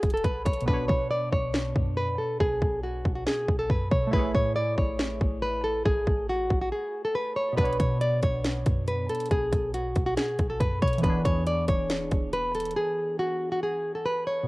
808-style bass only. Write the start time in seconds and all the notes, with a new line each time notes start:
0.03 E1
0.24 B1
0.46 B1
0.68 B1
0.89 B2
1.32 B1
1.76 F#2
2.40 B1
2.62 B1
3.05 B1
3.48 B1
3.70 F#2
3.91 B2
4.13 A1
4.34 A2
4.78 A1
5.21 A1
5.86 A1
6.07 A1
6.50 A1
7.58 B1
7.80 B2
8.23 B1
8.66 F#2
9.31 B1
9.53 B1
9.96 B1
10.39 B1
10.60 F#2
10.82 B2
11.04 E1
11.25 E2
11.69 E1
12.12 E1